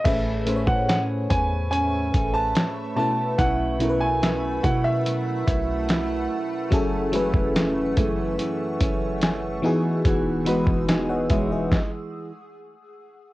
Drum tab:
CC |x---------------|----------------|----------------|----------------|
HH |x-x-x-x-x-x-x---|x-x-x-x-x-x-x---|x-x-x-x-x-x-x---|x-x-x-x---------|
SD |----o-------o---|----o-------o---|----o-------o---|----o---o-------|
BD |o--o--o---o-----|o-----o---o-----|o--o--o---o-----|o--o--o-o-------|